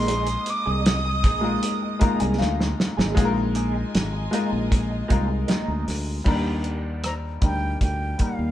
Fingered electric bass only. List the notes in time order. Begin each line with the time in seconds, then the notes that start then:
Already playing: A#1
0.67 C2
1.24 A#1
2.02 muted fingered electric bass stroke
2.22 C2
2.40 D2
2.98 G#1
3.18 A#1
3.95 G#1
4.53 A#1
5.11 C2
5.68 D2
5.88 D2
6.26 D#2
7.42 D2
7.82 D2
8.39 D#2